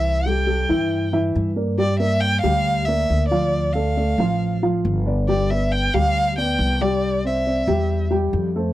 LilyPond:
<<
  \new Staff \with { instrumentName = "Violin" } { \time 4/4 \key g \dorian \tempo 4 = 137 e''8 g''2 r4. | d''8 e''8 g''8 f''4 e''4 d''8~ | d''8 f''2 r4. | d''8 e''8 g''8 f''4 g''4 d''8~ |
d''8 e''2 r4. | }
  \new Staff \with { instrumentName = "Grand piano" } { \time 4/4 \key g \dorian <e e' e''>8 <g g' a'>8 <g g' a'>8 <e e' e''>4 <e e' e''>4 <bes bes' d''>8 | <g g' g''>8 <bes bes' d''>4 <g g' g''>4 <bes bes' d''>4 <f f' f''>8~ | <f f' f''>8 <a a' d''>8 <a a' d''>8 <f f' f''>4 <f f' f''>4 <b b' d''>8 | <g g' g''>8 <b b' d''>4 <g g' g''>4 <b b' d''>4 <g g' g''>8~ |
<g g' g''>8 <c' c'' d''>8 <c' c'' d''>8 <g g' g''>4 <g g' g''>4 <a a' c''>8 | }
  \new Staff \with { instrumentName = "Upright bass" } { \clef bass \time 4/4 \key g \dorian c,4. g,4. g,4~ | g,4. d,4. d,4~ | d,4. a,,4. g,,4~ | g,,4. d,4. c,4~ |
c,4. e,4. f,4 | }
>>